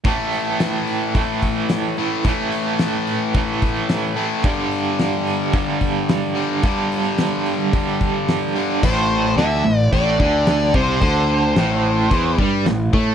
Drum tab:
CC |----------------|----------------|----------------|----------------|
HH |o-o-o-o-o-o-o-o-|o-o-o-o-o-o-o-o-|o-o-o-o-o-o-o-o-|o-o-o-o-o-o-o-o-|
SD |----o-------o---|----o-------o---|----o-------o---|----o-------o---|
BD |o-------o-o-----|o-------o-o-----|o-------o-o-----|o-------o-o-----|

CC |x---------------|----------------|
HH |----o---o---o---|o---o---o---o---|
SD |---oo-------o---|----o-------o---|
BD |o-------o-o---o-|o-------o-o---o-|